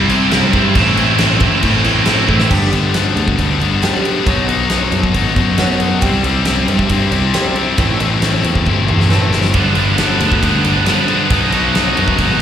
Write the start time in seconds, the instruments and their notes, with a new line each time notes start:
Already playing: picked electric bass C2, distorted electric guitar C3 G3 C4 E4, overdriven electric guitar C3
0.09 distorted electric guitar C3 G3 C4 E4, crash
0.31 distorted electric guitar C3 G3 C4 E4, snare, crash
0.53 picked electric bass G2, distorted electric guitar G3 C4 E4, kick, crash
0.74 picked electric bass A1, distorted electric guitar A2 E3 A3 C4 E4, kick, crash
0.97 distorted electric guitar A3 C4 E4, crash
1.17 distorted electric guitar A2 E3 A3 C4 E4, snare, crash
1.40 picked electric bass A1, overdriven electric guitar E3, distorted electric guitar A3 C4 E4, kick, crash
1.45 overdriven electric guitar A2
1.62 picked electric bass A2, distorted electric guitar E3 A3 C4 E4, kick, crash
1.84 picked electric bass A2, distorted electric guitar A2 E3 A3 C4 E4, crash
2.05 distorted electric guitar E3 A3 C4, snare, crash
2.10 distorted electric guitar E4
2.29 picked electric bass A1, distorted electric guitar A3 C4 E4, kick
2.40 snare
2.51 picked electric bass G1, distorted electric guitar G2 D3 G3 B3 D4, kick, crash
2.71 picked electric bass G1, steel-string acoustic guitar G2 D3, distorted electric guitar B3 D4, ride
2.76 distorted electric guitar G3
2.94 steel-string acoustic guitar G2, distorted electric guitar D3 G3 B3, snare, ride
2.99 distorted electric guitar D4
3.16 picked electric bass D2, steel-string acoustic guitar G2 D3, ride
3.28 kick
3.38 picked electric bass D2, distorted electric guitar G2 D3 G3 B3 D4, kick, ride
3.60 picked electric bass G1, steel-string acoustic guitar G2 D3, distorted electric guitar B3 D4, ride
3.64 distorted electric guitar G3
3.82 steel-string acoustic guitar G2, distorted electric guitar D3 G3 B3 D4, snare, ride
3.95 snare
4.04 steel-string acoustic guitar G2 D3, distorted electric guitar G3 B3 D4, ride
4.26 picked electric bass B1, distorted electric guitar B2 F#3 B3 D#4, kick, ride
4.47 steel-string acoustic guitar B2, distorted electric guitar F#3 B3 D#4, ride
4.69 distorted electric guitar B2 F#3 B3 D#4, snare, ride
4.92 picked electric bass F#2, steel-string acoustic guitar B2 F#3, ride
5.03 kick
5.14 picked electric bass G#1, distorted electric guitar B2 F#3 B3 D#4, kick, ride
5.35 picked electric bass F#2, steel-string acoustic guitar B2, distorted electric guitar B3 D#4, kick, ride
5.39 distorted electric guitar F#3
5.58 distorted electric guitar B2 F#3 B3, snare, ride
5.62 distorted electric guitar D#4
5.70 snare
5.80 steel-string acoustic guitar B2, distorted electric guitar B3 D#4, ride
5.84 distorted electric guitar F#3
6.02 picked electric bass C2, distorted electric guitar C3 G3 C4, kick, ride
6.06 distorted electric guitar E4
6.23 picked electric bass C2, steel-string acoustic guitar C3 G3, distorted electric guitar C4 E4, ride
6.28 distorted electric guitar G3
6.45 distorted electric guitar C3 G3 C4, snare, ride
6.50 distorted electric guitar E4
6.67 picked electric bass G2, steel-string acoustic guitar C3 G3, ride
6.79 kick
6.89 picked electric bass G2, distorted electric guitar C3 G3 C4, kick, ride
6.95 distorted electric guitar E4
7.11 picked electric bass C2, steel-string acoustic guitar C3, distorted electric guitar G3 C4 E4, ride
7.34 distorted electric guitar C3 G3 C4, snare, ride
7.38 distorted electric guitar E4
7.55 steel-string acoustic guitar C3, distorted electric guitar G3 C4 E4, ride
7.77 picked electric bass A1, distorted electric guitar A2 E3 A3 C4, kick, ride
7.82 distorted electric guitar E4
7.99 steel-string acoustic guitar A2 E3, distorted electric guitar A3 C4 E4, ride
8.21 steel-string acoustic guitar A2, distorted electric guitar E3 A3 C4 E4, snare, ride
8.43 picked electric bass E2, steel-string acoustic guitar A2 E3, ride
8.55 kick
8.66 picked electric bass G1, distorted electric guitar A2 E3 A3 C4 E4, kick, high tom
8.87 picked electric bass E2, steel-string acoustic guitar A2 E3, distorted electric guitar A3 C4 E4, mid tom
9.01 snare
9.09 picked electric bass A1, steel-string acoustic guitar A2, distorted electric guitar E3 A3 C4 E4, snare
9.31 picked electric bass G1, steel-string acoustic guitar A2 E3, distorted electric guitar A3 C4 E4, snare
9.44 snare
9.53 picked electric bass G1, distorted electric guitar G2 D3 G3 B3 D4, kick, ride
9.75 picked electric bass G1, distorted electric guitar G3 B3 D4, ride
9.98 distorted electric guitar D3 G3 B3 D4, snare, ride
10.19 picked electric bass D2, distorted electric guitar G3 B3 D4, ride
10.32 kick
10.42 picked electric bass D2, distorted electric guitar G2 D3 G3 B3 D4, kick, ride
10.63 picked electric bass G1, distorted electric guitar G3 B3 D4, ride
10.85 distorted electric guitar G2 D3 G3 B3 D4, snare, ride
11.08 distorted electric guitar G3 B3 D4, ride
11.30 picked electric bass B1, distorted electric guitar B2 F#3 B3 D#4, kick, ride
11.52 distorted electric guitar B3 D#4, ride
11.56 distorted electric guitar F#3
11.74 distorted electric guitar B2 F#3 B3 D#4, snare, ride
11.95 picked electric bass F#2, distorted electric guitar F#3 B3 D#4, ride
12.08 kick
12.18 picked electric bass G#1, distorted electric guitar B2 F#3 B3 D#4, kick, ride